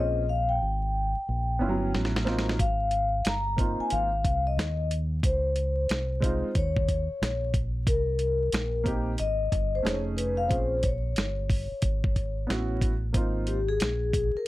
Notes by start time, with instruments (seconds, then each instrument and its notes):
Already playing: fingered electric bass A#1, grand piano C4 C#4 F4, vibraphone D#5
0.00 grand piano G#4
0.29 vibraphone F5
0.49 vibraphone G5
0.62 fingered electric bass G#1
1.17 muted fingered electric bass stroke
1.29 fingered electric bass A#1
1.59 fingered electric bass G1, grand piano B3 C#4 E4 F4
1.69 grand piano F#3
1.94 fingered electric bass A1, snare
2.05 snare
2.16 snare
2.24 grand piano A#3 C4 D#4 F4, snare
2.39 snare
2.49 snare
2.59 fingered electric bass G#1, vibraphone F5, kick, closed hi-hat
2.91 closed hi-hat
3.25 fingered electric bass G1, vibraphone A#5, snare, closed hi-hat
3.56 grand piano A#3 C4 D#4 F4, kick, closed hi-hat
3.80 vibraphone G#5, muted fingered electric bass stroke
3.90 fingered electric bass G#1, vibraphone F5, closed hi-hat
4.25 fingered electric bass C2, kick, closed hi-hat
4.47 vibraphone D#5
4.57 fingered electric bass D#2, snare, closed hi-hat
4.91 closed hi-hat
5.23 fingered electric bass C#2, vibraphone C5, kick, closed hi-hat
5.56 closed hi-hat
5.89 fingered electric bass C2, snare, closed hi-hat
6.20 grand piano G#3 C4 D#4 F4, kick, closed hi-hat
6.45 muted fingered electric bass stroke
6.55 fingered electric bass D#2, vibraphone C#5, kick, closed hi-hat
6.76 kick
6.88 kick, closed hi-hat
7.10 muted fingered electric bass stroke
7.22 fingered electric bass A#1, snare, closed hi-hat
7.54 kick, closed hi-hat
7.87 fingered electric bass C2, vibraphone A#4, kick, closed hi-hat
8.19 closed hi-hat
8.52 fingered electric bass A#1, snare, closed hi-hat
8.84 grand piano A#3 C4 D#4 G4, kick, closed hi-hat
9.18 fingered electric bass G#1, vibraphone D#5, closed hi-hat
9.52 fingered electric bass G1, kick, closed hi-hat
9.75 vibraphone C5
9.82 fingered electric bass F1, grand piano A3 C#4 D#4 G#4, vibraphone C#5
9.87 snare, closed hi-hat
10.17 vibraphone B4, closed hi-hat
10.37 vibraphone F5
10.48 fingered electric bass A#1, grand piano C4 C#4 F4 G#4, vibraphone C5, kick, closed hi-hat
10.83 vibraphone C#5, kick, closed hi-hat
11.16 fingered electric bass G1, snare, closed hi-hat
11.50 kick, open hi-hat
11.72 muted fingered electric bass stroke
11.82 fingered electric bass G#1, kick, closed hi-hat
12.04 kick
12.16 kick, closed hi-hat
12.47 fingered electric bass A1, grand piano B3 C#4 E4 F#4, snare, closed hi-hat
12.81 kick, closed hi-hat
13.13 fingered electric bass G#1, grand piano A#3 C4 D#4 F4, kick, closed hi-hat
13.47 vibraphone G4, closed hi-hat
13.68 vibraphone G#4
13.80 fingered electric bass A#1, snare, closed hi-hat
14.13 kick, closed hi-hat
14.35 vibraphone A#4, muted fingered electric bass stroke